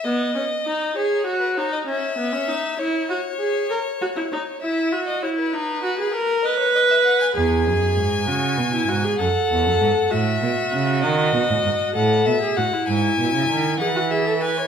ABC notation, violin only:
X:1
M:12/8
L:1/16
Q:3/8=65
K:E
V:1 name="Violin"
d6 c3 B c d e6 c6- | c6 e3 d c B6- B d c d e f g | g12 f6 e6 | d6 f2 e2 f2 g6 f2 e2 g2 |]